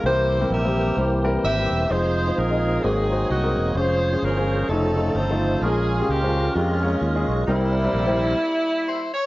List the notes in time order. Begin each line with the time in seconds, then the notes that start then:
0.04 C2 C3 E3 G3 A#3 C4 E4 G4 A#4 C5
0.41 G3 C4 E4 A#4
0.50 A#1 G4 A#4 E5
0.65 G3 C4 E4 G4
0.97 C2 G3 C4 E4 C5
1.24 G3 C4 E4 A#4
1.44 G#1 G4 A#4 E5
1.58 G3 C4 E4 G4
1.71 E1
1.89 F1 F3 G#3 C4 D#4 F4 G#4 C5
2.27 G#3 D#4 F4 C5
2.38 A#1 D#4 A#4
2.50 G#3 D#4 F4 D#5
2.84 G#1 G#2 F#3 G#3 A#3 C4 D#4 F#4 G4 G#4 A#4
2.91 G#4
3.11 G#3 C4 F#4 C5
3.30 C2 F#4 C5 D#5
3.43 G#3 C4 F#4 A#4
3.57 E1
3.75 F1 F3 G#3 C#4 F4 G4 G#4 C5
3.84 G#4
4.12 G#3 C#4 F4 C5
4.22 G1 C#4 A#4
4.37 G#3 C#4 F4 C5
4.69 F1 A3 C4 D#4 F4 A4 C#5
4.73 C#3 F3 D#4 A4
4.96 A3 D#4 F4 C#5
5.15 G1 D#4 A4 C5
5.30 A3 D#4 F4 C5
5.61 A#1 A#2 G#3 C#4 F4 G#4 A#4
5.99 G#3 C#4 F4 G4
6.09 C#2 C#4 G4
6.22 G#3 C#4 F4 C5
6.55 F2 G#3 C#4 F4 G4
6.83 G#3 C#4 F4 C#5
7.01 D#2
7.16 G#3 C#4 F4 G#4
7.28 B1
7.47 C2 C3 G3 A#3 C4 E4 A#4
7.84 G3 C4 E4 A#4
7.93 A#1
8.07 G3 C4 E4 C5
8.87 C5
9.14 C#5